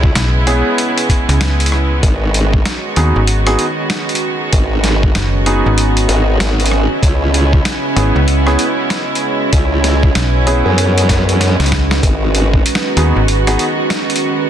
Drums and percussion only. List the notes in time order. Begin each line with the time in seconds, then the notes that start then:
0.03 kick
0.15 snare, closed hi-hat
0.47 closed hi-hat
0.78 closed hi-hat
0.98 closed hi-hat
1.09 kick, cross-stick, closed hi-hat
1.29 closed hi-hat
1.41 snare, closed hi-hat
1.60 closed hi-hat
1.66 closed hi-hat
1.72 cross-stick
2.03 kick, closed hi-hat
2.34 closed hi-hat
2.54 kick
2.66 snare, closed hi-hat
2.96 closed hi-hat
3.27 closed hi-hat
3.47 cross-stick, closed hi-hat
3.59 closed hi-hat
3.90 snare, closed hi-hat
4.09 closed hi-hat
4.15 closed hi-hat
4.53 kick, closed hi-hat
4.84 snare, closed hi-hat
5.03 kick
5.15 snare, closed hi-hat
5.46 closed hi-hat
5.78 closed hi-hat
5.97 closed hi-hat
6.09 cross-stick, closed hi-hat
6.40 snare, closed hi-hat
6.60 closed hi-hat
6.66 closed hi-hat
6.71 cross-stick
7.03 kick, closed hi-hat
7.34 closed hi-hat
7.53 kick
7.65 snare, closed hi-hat
7.97 closed hi-hat
8.28 closed hi-hat
8.47 cross-stick
8.59 closed hi-hat
8.90 snare, closed hi-hat
9.15 closed hi-hat
9.53 kick, closed hi-hat
9.84 snare, closed hi-hat
10.03 kick
10.15 snare, closed hi-hat
10.47 closed hi-hat
10.78 closed hi-hat
10.98 closed hi-hat
11.09 kick, snare, closed hi-hat
11.29 closed hi-hat
11.41 snare, closed hi-hat
11.60 snare, closed hi-hat
11.66 closed hi-hat
11.72 kick, snare
11.91 snare
12.03 kick, closed hi-hat
12.35 closed hi-hat
12.54 kick
12.66 closed hi-hat
12.75 snare
12.97 closed hi-hat
13.28 closed hi-hat
13.47 cross-stick, closed hi-hat
13.59 closed hi-hat
13.90 snare, closed hi-hat
14.10 closed hi-hat
14.16 closed hi-hat